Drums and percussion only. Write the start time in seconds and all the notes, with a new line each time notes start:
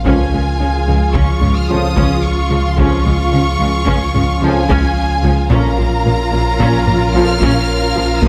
0.06 taiko
1.15 taiko
1.43 taiko low-mid
1.97 taiko
2.78 taiko
3.88 taiko
4.15 taiko low-mid
4.69 taiko
5.51 taiko
6.60 taiko
6.87 taiko low-mid
7.42 taiko
8.23 taiko